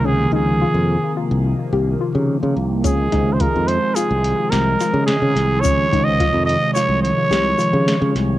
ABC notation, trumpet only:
X:1
M:5/4
L:1/16
Q:1/4=107
K:Db
V:1 name="Trumpet"
A2 A6 z12 | A3- A/2 c/2 B2 c2 A4 B4 A4 | d3 e3 e2 d2 d8 z2 |]